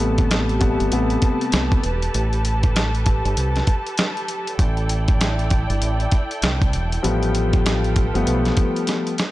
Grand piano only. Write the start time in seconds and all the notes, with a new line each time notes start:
Already playing: C3 G3 A3 B3
0.59 C3 G3 A3 B3
0.91 C3 G3 A3 B3
7.03 F3 G3 A3 B3
8.14 F3 G3 A3 B3